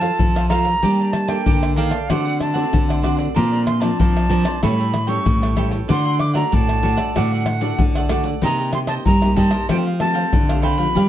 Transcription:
Already playing: F3 A5
0.01 F4 A4 C5 F5, pandeiro, shaker
0.19 C3 F3, pandeiro, shaker, surdo
0.36 A4 C5 F5, pandeiro, tamborim, shaker
0.49 F4 A4 C5 F5 A#5, pandeiro, tamborim
0.65 A4 C5 F5, pandeiro, shaker
0.82 G3 A#3 D4 A#4 D5 G5 A5, pandeiro, shaker, surdo
1.00 D5 G5 A5, pandeiro, shaker
1.12 A5, muted cavaquinho stroke, pandeiro, tamborim
1.27 A#3 D4 A4 D5 G5 A5, pandeiro, tamborim, shaker
1.45 D3 A#4 D5 G5 A5, pandeiro, shaker, surdo
1.63 pandeiro, tamborim, shaker
1.76 D#3 A#3 D4 A4 A#4 D5 F5 G5 A5, pandeiro
1.91 D5 G5 A5, pandeiro, tamborim, shaker
2.09 D3 A3 C4 D4 F#4 C5 D5 F#5, pandeiro, tamborim, shaker, surdo
2.25 C5 D5 F#5, pandeiro, shaker
2.40 A5, muted cavaquinho stroke, pandeiro, tamborim
2.54 A3 C4 F#4 C5 D5 F#5, pandeiro, shaker
2.73 A2 D3, pandeiro, shaker, surdo
2.88 C5 D5 F#5, pandeiro, tamborim, shaker
3.02 A3 C4 D4 F#4 C5 D5 F#5, pandeiro, tamborim, shaker
3.17 C5 D5 F#5, pandeiro, shaker
3.34 A#2 F3 C4 D4 A#4 C5 D5 A#5, pandeiro, shaker, surdo
3.52 A#4 C5 D5, pandeiro, shaker
3.65 C6, muted cavaquinho stroke, pandeiro, tamborim, shaker
3.80 F3 C4 D4 A#4 C5 D5 A5, pandeiro, tamborim, shaker
3.99 F3 D4 A#4 C5 D5, pandeiro, shaker, surdo
4.17 pandeiro, tamborim, shaker
4.29 F3 C4 D4 A#4 C5 D5, pandeiro, shaker
4.44 A#4 C5 D5, pandeiro, tamborim, shaker
4.62 A2 G3 C#4 E4 A4 C#5 G5 B5, pandeiro, tamborim, shaker, surdo
4.78 A4 C#5 G5, pandeiro, shaker
4.92 muted cavaquinho stroke, pandeiro, tamborim
5.07 G3 C#4 E4 A4 C#5 G5 C#6, pandeiro, shaker
5.26 A2 E3, pandeiro, shaker, surdo
5.42 A4 C#5 G5, pandeiro, tamborim, shaker
5.56 G3 C#4 E4 A4 C#5 G5, pandeiro, tamborim
5.71 A4 C#5 G5, pandeiro, shaker
5.88 D3 A3 D4 F#4 A4 D5 F#5 C6, pandeiro, shaker, surdo
6.05 A4 D5 F#5, pandeiro, shaker
6.19 D6, muted cavaquinho stroke, pandeiro, tamborim
6.33 A3 D4 F#4 A4 D5 F#5 A#5, pandeiro, tamborim, shaker
6.51 A2 D4 A4 D5 F#5 A5, pandeiro, shaker, surdo
6.69 pandeiro, tamborim, shaker
6.82 A2 A3 D4 F#4 A4 D5 F#5, pandeiro, shaker
6.97 A4 D5 F#5, pandeiro, tamborim, shaker
7.15 A2 D3 A3 D4 F#4 A4 D5 F#5, pandeiro, tamborim, shaker, surdo
7.32 A4 D5 F#5, pandeiro, shaker
7.46 muted cavaquinho stroke, pandeiro, tamborim, shaker
7.61 A3 D4 F#4 A4 D5 F#5, pandeiro, shaker
7.78 A2 D3, pandeiro, shaker, surdo
7.95 A4 D5 F#5, pandeiro, tamborim, shaker
8.09 A3 D4 F#4 A4 D5 F#5, pandeiro, tamborim
8.24 D5 F#5, pandeiro, shaker
8.28 A4
8.41 C3 A#3 D#4 G4 A#4 C5 D#5 A#5, pandeiro, shaker, surdo
8.59 A#4 C5 D#5, pandeiro, shaker
8.72 A#3 D#4 G4 C6, muted cavaquinho stroke, pandeiro, tamborim, shaker
8.87 A#4 C5 D#5 A5, pandeiro, tamborim, shaker
9.05 G2 G3 D#4 A#4 C5 D#5 A#5, pandeiro, shaker, surdo
9.22 A#3 D#4 G4, pandeiro, tamborim, shaker
9.36 G3 D#4 A#4 C5 D#5 A5, pandeiro, shaker, surdo
9.51 A#4 C5 D#5, pandeiro, tamborim, shaker
9.68 F3 A3 C4 G4 A4 C5 F5 G5, pandeiro, tamborim, shaker, surdo
9.85 C5 F5 G5, pandeiro, shaker
9.99 A3 C4 G4 A5, muted cavaquinho stroke, pandeiro, tamborim, shaker
10.14 C5 F5 G5, pandeiro, shaker
10.32 C3 D3, pandeiro, shaker, surdo
10.49 A3 C4 G4 C5 F5 G5, pandeiro, tamborim, shaker
10.62 A4 C5 F5 G5 B5, pandeiro, tamborim
10.77 F3 B3 D4 C5 F5 G5, pandeiro, shaker
10.95 G2 G3 D4 G4 B4 F5, pandeiro, shaker, surdo

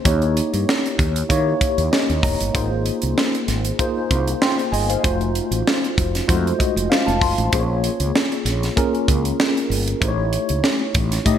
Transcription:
0.05 D#2 A#3 D#4 E4 G4 C#5, kick, closed hi-hat
0.22 closed hi-hat
0.37 closed hi-hat
0.54 G2, closed hi-hat
0.69 snare
0.86 closed hi-hat
0.99 D#2, kick, closed hi-hat
1.16 closed hi-hat
1.29 D#3 A#3 D#4 E4 G4 C#5, kick, closed hi-hat
1.61 kick, closed hi-hat
1.78 D#2, closed hi-hat
1.92 D#5, snare
2.10 D#2, closed hi-hat
2.23 E1 A#5, kick, open hi-hat
2.40 G1, closed hi-hat
2.54 G#1 A#3 D#4 F4 G#4 C5, kick, closed hi-hat
2.86 closed hi-hat
3.02 C2, closed hi-hat
3.18 snare
3.35 closed hi-hat
3.48 G#1, snare, closed hi-hat
3.65 closed hi-hat
3.79 A#3 D#4 F4 G#4 C5, kick, closed hi-hat
4.11 C2, kick, closed hi-hat
4.28 closed hi-hat
4.42 G5 C6, snare
4.59 closed hi-hat
4.72 G1 D#5 G#5, open hi-hat
4.89 C5 F5, closed hi-hat
5.03 F1 A3 D#4 F4 F#4 C5, kick, closed hi-hat
5.21 closed hi-hat
5.35 closed hi-hat
5.51 A1, closed hi-hat
5.67 snare
5.84 closed hi-hat
5.97 F1, kick, closed hi-hat
6.15 snare, closed hi-hat
6.27 F2 G#3 D#4 F4 F#4 C5, kick, closed hi-hat
6.34 A3
6.47 closed hi-hat
6.59 D#5, kick, closed hi-hat
6.76 F1, closed hi-hat
6.90 F5, snare
7.07 F1 A5, closed hi-hat
7.21 F#1 C6, kick, open hi-hat
7.38 A1, closed hi-hat
7.52 A#1 A#3 C#4 F4 G#4 C5, kick, closed hi-hat
7.60 C#5
7.84 closed hi-hat
8.00 C#2, closed hi-hat
8.15 snare
8.32 closed hi-hat
8.45 A#1, snare, closed hi-hat
8.63 snare, closed hi-hat
8.76 A#3 C#4 F4 G#4 A#4, kick, closed hi-hat
8.95 closed hi-hat
9.08 C#2, kick, closed hi-hat
9.25 closed hi-hat
9.40 snare
9.57 closed hi-hat
9.70 G1, open hi-hat
9.88 closed hi-hat
10.00 A1 A3 D#4 E4 G4 C5, kick, closed hi-hat
10.08 C#5
10.33 closed hi-hat
10.49 C#2, closed hi-hat
10.64 snare
10.95 A1, kick, closed hi-hat
11.12 snare, closed hi-hat
11.25 A2 A3 D#4 E4 G4 D#5, kick, closed hi-hat

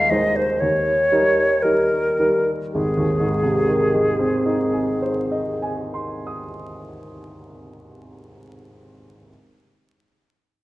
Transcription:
Already playing: D#1 D#2 G#3 D#4 C5 F5
0.10 G#3 D#4 C5 D#5
0.36 C5
0.60 D#2 C#5
1.12 G3 D#4 A#4
1.62 G3 D#4 A#4
2.20 G3 D#4 A#4
2.73 G#1 G#4
2.97 D#2
3.20 G#2
3.43 C3
3.68 D#3
3.94 G#3
4.19 C4
4.46 D#4
4.73 G#4
5.02 C5
5.32 D#5
5.62 G#5
5.94 C6
6.27 D#6

